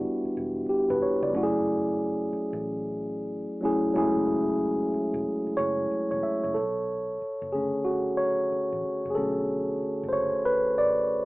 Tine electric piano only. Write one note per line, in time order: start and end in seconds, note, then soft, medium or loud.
0.00 1.35 G3 medium
0.00 1.35 B3 medium
0.00 1.35 D4 medium
0.00 1.35 E4 medium
0.00 1.35 F#4 medium
0.00 0.69 G4 medium
0.69 0.88 G4 medium
0.90 1.01 B4 medium
1.02 1.21 C#5 medium
1.23 1.53 D5 medium
1.33 2.46 F#3 medium
1.33 2.46 A3 medium
1.33 2.47 C#4 medium
1.33 2.47 E4 medium
1.33 1.43 F#4 medium
1.43 2.51 G#4 medium
3.61 3.90 F#3 medium
3.61 3.91 A3 medium
3.61 3.91 C#4 medium
3.61 3.91 E4 medium
3.61 3.92 G#4 medium
3.94 5.07 F#3 medium
3.94 4.03 G#3 medium
3.94 5.08 C#4 medium
3.94 5.08 E4 medium
3.94 5.09 G#4 medium
4.01 5.10 A3 medium
5.57 6.10 C#5 medium
6.11 6.22 C#5 medium
6.23 6.42 E5 medium
6.44 6.74 C#5 medium
6.54 7.48 A4 medium
7.52 9.15 D3 soft
7.52 9.16 A3 soft
7.52 9.17 C#4 medium
7.52 7.86 G#4 medium
7.85 7.99 F#4 medium
8.17 9.13 C#5 medium
9.10 9.16 G#4 medium
9.15 10.10 D3 soft
9.15 10.10 A3 soft
9.15 10.11 C#4 medium
9.15 10.04 A4 medium
10.09 10.14 C5 medium
10.13 10.47 C#5 medium
10.45 10.76 B4 medium
10.78 11.25 D5 medium